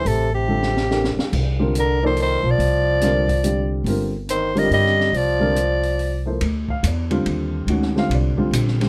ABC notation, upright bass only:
X:1
M:3/4
L:1/8
Q:"Swing" 1/4=142
K:Dphr
V:1 name="Upright bass" clef=bass
A,,,4- A,,, z | C,,4- C,, =B,,, | C,,6 | G,,,4 G,,2 |
C,,6 | D,,2 =E,,2 _E,,2 | D,,2 C,, z B,,,2 |]